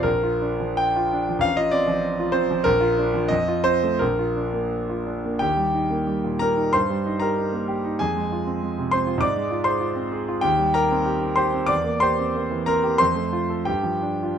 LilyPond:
\new Staff \with { instrumentName = "Grand piano" } { \time 2/4 \key bes \major \tempo 4 = 93 << { bes'4 g''4 | f''16 ees''16 d''4 c''8 | bes'4 ees''8 c''8 | bes'4 r4 |
\key ees \major <g' g''>4. <bes' bes''>8 | <c'' c'''>8. <bes' bes''>8. r8 | <aes' aes''>4. <c'' c'''>8 | <d'' d'''>8. <c'' c'''>8. r8 |
\key c \dorian <g' g''>8 <bes' bes''>4 <c'' c'''>8 | <d'' d'''>8 <c'' c'''>4 <bes' bes''>8 | <c'' c'''>4 <g' g''>4 | } \\ { bes,,16 f'16 d'16 f8 f'16 d'16 f16 | a,,16 f'16 c'16 f8 f'16 c'16 f16 | bes,,16 f'16 d'16 f16 f,16 f'16 c'16 a16 | bes,,16 f'16 d'16 bes8 f'16 d'16 bes16 |
ees,16 g16 ees'16 bes16 g16 bes,16 bes16 ees'16 | g,16 g16 ees'16 g'16 ees'16 bes16 g'16 ees'16 | f,16 aes16 f'16 c'16 aes16 c16 c'16 f'16 | aes,16 aes16 f'16 aes'16 f'16 c'16 aes'16 f'16 |
ees,16 g16 g'16 c'16 g'16 c'16 g'16 c'16 | e,16 bes16 g'16 c'16 bes16 e16 c'16 g'16 | f,16 a16 f'16 a'16 g,16 f16 d'16 f'16 | } >> }